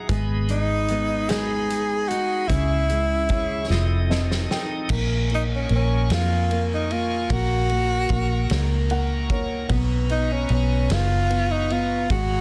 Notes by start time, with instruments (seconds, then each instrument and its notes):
Already playing: upright piano F#3 E5 G#5, tonewheel organ G#4
0.09 fingered electric bass G#1, upright piano G#3, steel-string acoustic guitar B3 G#4, tonewheel organ D#5 B5, kick, closed hi-hat
0.49 upright piano G#3, steel-string acoustic guitar D#4, tenor saxophone D#4, closed hi-hat
0.88 upright piano G#3, steel-string acoustic guitar B3, closed hi-hat
1.29 upright piano G#3, steel-string acoustic guitar D#4, tenor saxophone G#4, snare, closed hi-hat
1.70 steel-string acoustic guitar G#4, closed hi-hat
2.09 steel-string acoustic guitar D#4, tenor saxophone F#4, closed hi-hat
2.47 fingered electric bass C#2, upright piano C#3, steel-string acoustic guitar C#4 G#4, tenor saxophone E4, tonewheel organ E5 C#6, kick, closed hi-hat
2.89 upright piano G#3, steel-string acoustic guitar E4, closed hi-hat
3.29 upright piano C#4, steel-string acoustic guitar C#4, kick, closed hi-hat
3.70 fingered electric bass F1, upright piano F3, steel-string acoustic guitar C4, tonewheel organ A4 D#5 D#6, snare
4.10 upright piano C4 D#5, steel-string acoustic guitar A4, snare
4.31 snare
4.51 upright piano D#4 G5, steel-string acoustic guitar D#4, snare
4.89 fingered electric bass A#1, upright piano A#3, tonewheel organ A#4 C#6, kick, crash
4.93 tonewheel organ G#5
5.30 upright piano A#3, ride
5.35 tenor saxophone D#4
5.55 tenor saxophone C#4
5.69 fingered electric bass A#1, upright piano A#3, ride
5.75 tenor saxophone C#4
6.10 fingered electric bass F2, upright piano A#3, tenor saxophone F4, snare, ride
6.51 upright piano A#3, ride
6.74 tenor saxophone D#4
6.91 upright piano A#3, tenor saxophone F4, ride
7.30 fingered electric bass A#1, upright piano A#3, tenor saxophone F#4, tonewheel organ A#5, kick, ride
7.69 upright piano A#3, ride
8.09 fingered electric bass A#1, upright piano A#3, kick, ride
8.50 fingered electric bass C#2, upright piano A#3, snare, ride
8.90 upright piano A#3 F#5, ride
9.30 upright piano A#3 C#5, kick, ride
9.69 fingered electric bass B1, upright piano B3, tonewheel organ B4, kick, ride
10.09 upright piano B3, tenor saxophone D#4, ride
10.32 tenor saxophone C#4
10.49 fingered electric bass B1, upright piano B3, ride
10.53 tenor saxophone C#4
10.90 fingered electric bass F#1, upright piano B3, tenor saxophone F4, snare, ride
11.30 upright piano B3, ride
11.51 tenor saxophone D#4
11.70 upright piano B3, tenor saxophone F4, ride
12.10 fingered electric bass G#1, upright piano G#3, tenor saxophone F#4, tonewheel organ G#4 B5, kick, ride